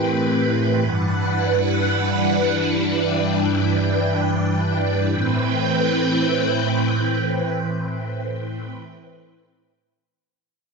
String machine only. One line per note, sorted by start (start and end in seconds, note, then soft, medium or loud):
0.00 0.78 A2 medium
0.00 0.78 E3 medium
0.00 0.78 C4 medium
0.00 5.07 B4 medium
0.00 0.78 G5 medium
0.83 5.07 G2 medium
0.83 5.07 E3 medium
0.83 5.07 D4 medium
0.83 2.95 F#5 medium
2.97 5.09 G5 medium
5.11 8.70 A2 medium
5.11 8.70 E3 medium
5.11 8.70 C4 medium
5.11 8.70 B4 medium
5.11 8.70 G5 medium